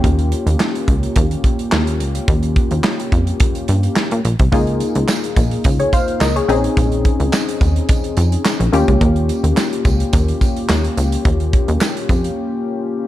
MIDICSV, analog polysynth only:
0, 0, Header, 1, 2, 480
1, 0, Start_track
1, 0, Tempo, 560748
1, 33, Time_signature, 4, 2, 24, 8
1, 11191, End_track
2, 0, Start_track
2, 0, Title_t, "Analog polysynth"
2, 0, Program_c, 0, 90
2, 0, Note_on_c, 0, 58, 82
2, 0, Note_on_c, 0, 61, 75
2, 0, Note_on_c, 0, 65, 73
2, 0, Note_on_c, 0, 67, 91
2, 3596, Note_off_c, 0, 58, 0
2, 3599, Note_off_c, 0, 61, 0
2, 3601, Note_off_c, 0, 65, 0
2, 3603, Note_off_c, 0, 67, 0
2, 3867, Note_on_c, 0, 58, 84
2, 3871, Note_on_c, 0, 63, 76
2, 3875, Note_on_c, 0, 65, 73
2, 3880, Note_on_c, 0, 68, 90
2, 4818, Note_off_c, 0, 68, 0
2, 4961, Note_on_c, 0, 73, 64
2, 4966, Note_on_c, 0, 68, 58
2, 5068, Note_off_c, 0, 73, 0
2, 5071, Note_off_c, 0, 68, 0
2, 5075, Note_on_c, 0, 77, 71
2, 5080, Note_on_c, 0, 72, 58
2, 5302, Note_off_c, 0, 77, 0
2, 5305, Note_off_c, 0, 72, 0
2, 5315, Note_on_c, 0, 75, 70
2, 5321, Note_on_c, 0, 70, 64
2, 5435, Note_off_c, 0, 75, 0
2, 5438, Note_off_c, 0, 70, 0
2, 5443, Note_on_c, 0, 73, 67
2, 5447, Note_on_c, 0, 68, 60
2, 5517, Note_off_c, 0, 58, 0
2, 5519, Note_off_c, 0, 63, 0
2, 5521, Note_off_c, 0, 65, 0
2, 5549, Note_on_c, 0, 60, 84
2, 5551, Note_off_c, 0, 68, 0
2, 5553, Note_on_c, 0, 61, 72
2, 5558, Note_on_c, 0, 63, 73
2, 5561, Note_on_c, 0, 68, 95
2, 5670, Note_off_c, 0, 73, 0
2, 7437, Note_off_c, 0, 60, 0
2, 7439, Note_off_c, 0, 61, 0
2, 7442, Note_off_c, 0, 63, 0
2, 7443, Note_off_c, 0, 68, 0
2, 7468, Note_on_c, 0, 58, 78
2, 7473, Note_on_c, 0, 61, 73
2, 7478, Note_on_c, 0, 65, 72
2, 7481, Note_on_c, 0, 67, 91
2, 11191, Note_off_c, 0, 58, 0
2, 11191, Note_off_c, 0, 61, 0
2, 11191, Note_off_c, 0, 65, 0
2, 11191, Note_off_c, 0, 67, 0
2, 11191, End_track
0, 0, End_of_file